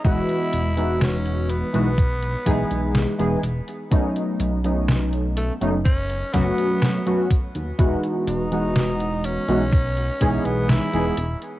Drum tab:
HH |xxxxxxxxxxxxxxxx|xxxxxxxxxxxxxxxx|xxxxxxxxxxxxxxxx|
SD |----o-------o---|----o-----o-o---|----o-------o---|
BD |o-------o-o-----|o-------o-o---o-|o-------o-o-----|